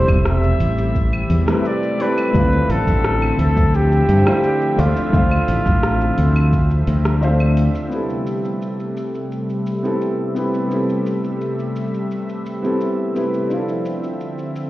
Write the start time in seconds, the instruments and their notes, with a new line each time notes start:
Already playing: analog synth pad C3 G3 E5, grand piano A3 C4 E4 G4 C5
0.08 fingered electric bass E1, kick, claves, shaker
0.25 flugelhorn E5, cross-stick, shaker
0.43 shaker
0.60 fingered electric bass A1, open hi-hat
0.78 shaker
0.95 kick, shaker
1.13 claves, shaker
1.30 fingered electric bass E2, open hi-hat
1.46 grand piano A3 C4 E4 G4 B4, cross-stick, shaker
1.59 flugelhorn E5
1.65 flugelhorn D5, shaker
1.83 shaker
1.98 grand piano A3 C4 E4 G4 A4, open hi-hat
2.02 flugelhorn B4
2.18 claves, shaker
2.31 fingered electric bass D2, analog synth pad D3 F3 C4 E5, grand piano A3 D4 E4, kick, shaker
2.36 grand piano C4 F4
2.53 shaker
2.69 fingered electric bass A1, flugelhorn A4, open hi-hat
2.87 fingered electric bass A1, kick, shaker
3.04 cross-stick, shaker
3.22 claves, shaker
3.39 fingered electric bass D2, flugelhorn A4, open hi-hat
3.57 kick, shaker
3.74 flugelhorn G4, shaker
3.92 shaker
4.09 fingered electric bass G2, open hi-hat
4.25 grand piano A3 D4 E4 F4 C5, cross-stick, claves, shaker
4.44 shaker
4.62 shaker
4.76 fingered electric bass D2, grand piano A3 D4 F4 D5 E5, flugelhorn F4, open hi-hat
4.96 shaker
5.10 fingered electric bass D2, grand piano A3 D4 E5, kick, shaker
5.15 grand piano F4 C5
5.31 claves, shaker
5.48 fingered electric bass A1, open hi-hat
5.66 fingered electric bass A1, kick, shaker
5.83 cross-stick, shaker
6.01 shaker
6.18 fingered electric bass D2, open hi-hat
6.36 claves, shaker
6.53 kick, shaker
6.71 shaker
6.87 fingered electric bass D2, open hi-hat
7.05 cross-stick, shaker
7.20 grand piano A3 D4 F4 C5 E5, shaker
7.40 claves, shaker
7.57 open hi-hat
7.75 shaker
7.88 analog synth pad C3, grand piano B3 C4 E4, shaker
7.93 analog synth pad G3 A3 E5, grand piano G4 A4
8.10 shaker
8.27 shaker
8.45 shaker
8.62 shaker
8.80 shaker
8.97 shaker
9.15 shaker
9.32 shaker
9.50 shaker
9.67 shaker
9.83 grand piano B3 C4 E4 G4 A4, shaker
10.02 shaker
10.35 grand piano B3 C4 E4 G4 B4, shaker
10.54 shaker
10.68 grand piano B3 C4 E4, shaker
10.73 grand piano G4 A4
10.89 shaker
11.06 shaker
11.24 shaker
11.41 shaker
11.59 shaker
11.76 shaker
11.94 shaker
12.11 shaker
12.29 shaker
12.46 shaker
12.62 grand piano B3 C4 E4 G4, shaker
12.66 grand piano A4
12.81 shaker
13.14 grand piano B3 C4 E4 G4 B4, shaker
13.34 shaker
13.47 grand piano C4 D4 E4, shaker
13.51 analog synth pad D3 F3 C4, grand piano F4 A4
13.69 shaker
13.85 shaker
14.04 shaker
14.21 shaker
14.39 shaker
14.56 shaker